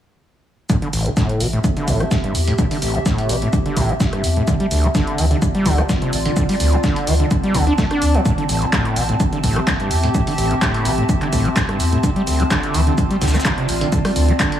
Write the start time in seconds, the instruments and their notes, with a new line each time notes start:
0.70 acid bass A2, ambient pad C4, kick, closed hi-hat, shaker
0.82 acid bass D3, closed hi-hat
0.89 sub bass A1, acid bass A1, ambient pad E5, open hi-hat, shaker
0.95 ambient pad A5
1.06 acid bass A3, closed hi-hat
1.13 ambient pad G4
1.17 acid bass A2, kick, snare, closed hi-hat, shaker
1.29 closed hi-hat
1.40 sub bass A1, acid bass B2, open hi-hat, shaker
1.53 acid bass A2, closed hi-hat
1.64 kick, closed hi-hat, shaker
1.77 acid bass D3, closed hi-hat
1.88 sub bass A1, acid bass A2, kick, open hi-hat, shaker
2.00 acid bass A3, cross-stick, closed hi-hat
2.11 acid bass A2, kick, snare, closed hi-hat, shaker
2.24 acid bass G2, closed hi-hat
2.35 sub bass E2, open hi-hat, shaker
2.47 acid bass A2, closed hi-hat
2.58 acid bass A2, kick, closed hi-hat, shaker
2.71 acid bass D3, closed hi-hat, open hi-hat
2.82 sub bass A1, acid bass A1, open hi-hat, shaker
2.95 acid bass A3, closed hi-hat
3.06 acid bass A2, kick, snare, closed hi-hat, shaker
3.18 closed hi-hat
3.29 sub bass A1, acid bass B2, open hi-hat, shaker
3.42 acid bass A2, closed hi-hat
3.53 kick, closed hi-hat, shaker
3.66 acid bass D3, closed hi-hat
3.77 sub bass A1, acid bass A2, kick, open hi-hat, shaker
3.89 acid bass A3, closed hi-hat
4.00 acid bass A2, kick, snare, closed hi-hat, shaker
4.13 acid bass G2, cross-stick, closed hi-hat
4.24 sub bass E2, open hi-hat, shaker
4.36 acid bass A2, closed hi-hat
4.47 acid bass D3, kick, closed hi-hat, shaker
4.60 acid bass G3, closed hi-hat
4.65 ambient pad D5
4.71 sub bass D2, acid bass D2, open hi-hat, shaker
4.84 acid bass D4, closed hi-hat
4.95 acid bass D3, kick, snare, closed hi-hat, shaker
5.02 ambient pad F4
5.07 closed hi-hat
5.18 sub bass D2, acid bass E3, open hi-hat, shaker
5.31 acid bass D3, closed hi-hat
5.42 kick, closed hi-hat, shaker
5.55 acid bass G3, closed hi-hat
5.66 sub bass D2, acid bass D3, kick, open hi-hat, shaker
5.78 acid bass D4, cross-stick, closed hi-hat
5.89 acid bass D3, kick, snare, closed hi-hat, shaker
6.02 acid bass C3, closed hi-hat
6.13 sub bass A1, open hi-hat, shaker
6.25 acid bass D3, closed hi-hat
6.36 acid bass D3, kick, closed hi-hat, shaker
6.49 acid bass G3, closed hi-hat, open hi-hat
6.60 acid bass D2, sub bass D2, open hi-hat, shaker
6.73 acid bass D4, closed hi-hat
6.84 acid bass D3, kick, snare, closed hi-hat, shaker
6.96 closed hi-hat
7.07 sub bass D2, acid bass E3, open hi-hat, shaker
7.20 acid bass D3, closed hi-hat
7.31 kick, closed hi-hat, shaker
7.44 acid bass G3, closed hi-hat
7.55 sub bass D2, acid bass D3, kick, open hi-hat, shaker
7.67 acid bass D4, closed hi-hat
7.78 acid bass A3, kick, snare, closed hi-hat, shaker
7.91 acid bass D4, cross-stick, closed hi-hat
8.02 sub bass D2, open hi-hat, shaker
8.14 acid bass F3, closed hi-hat
8.25 acid bass A2, kick, closed hi-hat, shaker
8.38 acid bass D3, closed hi-hat
8.49 acid bass A1, sub bass A1, open hi-hat, shaker
8.62 acid bass A3, closed hi-hat
8.73 acid bass A2, ambient pad G4, kick, snare, clap, closed hi-hat, shaker
8.85 closed hi-hat
8.96 sub bass A1, acid bass B2, ambient pad E5, open hi-hat, shaker
9.09 acid bass A2, closed hi-hat
9.20 kick, closed hi-hat, shaker
9.33 acid bass D3, closed hi-hat
9.44 sub bass A1, acid bass A2, kick, open hi-hat, shaker
9.56 acid bass A3, cross-stick
9.67 acid bass A2, kick, snare, clap, closed hi-hat, shaker
9.80 acid bass G2, closed hi-hat
9.91 sub bass E2, open hi-hat, shaker
10.03 acid bass A2, closed hi-hat
10.14 acid bass A2, kick, closed hi-hat, shaker
10.27 acid bass D3, closed hi-hat, open hi-hat
10.38 acid bass A1, sub bass A1, open hi-hat, shaker
10.51 acid bass A3, closed hi-hat
10.62 acid bass A2, kick, snare, clap, closed hi-hat, shaker
10.74 closed hi-hat
10.85 sub bass A1, acid bass B2, open hi-hat, shaker
10.98 acid bass A2, closed hi-hat
11.09 kick, closed hi-hat, shaker
11.22 acid bass D3, clap, closed hi-hat
11.33 sub bass A1, acid bass A2, kick, open hi-hat, shaker
11.45 acid bass A3, closed hi-hat
11.56 acid bass A2, kick, snare, clap, closed hi-hat, shaker
11.69 acid bass G2, cross-stick, closed hi-hat
11.80 sub bass E2, open hi-hat, shaker
11.92 acid bass A2, closed hi-hat
12.03 acid bass D3, kick, closed hi-hat, shaker
12.16 acid bass G3, ambient pad F4, closed hi-hat
12.27 acid bass D2, sub bass D2, open hi-hat, shaker
12.39 acid bass D4, closed hi-hat
12.51 acid bass D3, kick, snare, clap, closed hi-hat, shaker
12.63 closed hi-hat
12.68 ambient pad D5
12.74 sub bass D2, acid bass E3, open hi-hat, shaker
12.87 acid bass D3, closed hi-hat
12.98 kick, closed hi-hat, shaker
13.11 acid bass G3, closed hi-hat
13.21 sub bass D2, acid bass D3, kick, snare, open hi-hat, shaker
13.28 snare, shaker
13.34 acid bass D4, cross-stick, snare, shaker
13.40 snare, shaker
13.45 acid bass D3, kick, snare, clap, closed hi-hat, shaker
13.58 acid bass C3, closed hi-hat
13.69 sub bass A1, open hi-hat, shaker
13.81 acid bass D3, closed hi-hat
13.92 acid bass D3, kick, closed hi-hat, shaker
14.05 acid bass G3, cross-stick, closed hi-hat, open hi-hat
14.16 acid bass D2, sub bass D2, open hi-hat, shaker
14.28 acid bass D4, closed hi-hat
14.40 acid bass D3, kick, snare, clap, closed hi-hat, shaker
14.52 closed hi-hat